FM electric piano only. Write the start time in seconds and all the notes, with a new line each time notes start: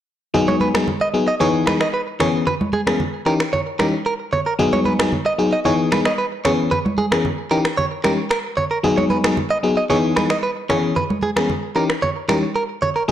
0.34 F#3 B3 D#4 G#4
0.74 F#3 B3 D#4 G#4
1.14 F#3 B3 D#4 G#4
1.40 E3 B3 D#4 G#4
1.67 E3 B3 D#4 G#4
2.20 E3 B3 C#4 G#4
2.87 E3 B3 C#4 G#4
3.26 E3 C#4 D#4 G4
3.79 E3 C#4 D#4 G4
4.59 F#3 B3 D#4 G#4
4.99 F#3 B3 D#4 G#4
5.38 F#3 B3 D#4 G#4
5.65 E3 B3 D#4 G#4
5.92 E3 B3 D#4 G#4
6.45 E3 B3 C#4 G#4
7.11 E3 B3 C#4 G#4
7.51 E3 C#4 D#4 G4
8.04 E3 C#4 D#4 G4
8.83 F#3 B3 D#4 G#4
9.24 F#3 B3 D#4 G#4
9.63 F#3 B3 D#4 G#4
9.90 E3 B3 D#4 G#4
10.16 E3 B3 D#4 G#4
10.69 E3 B3 C#4 G#4
11.36 E3 B3 C#4 G#4
11.75 E3 C#4 D#4 G4
12.28 E3 C#4 D#4 G4
13.08 F#3 B3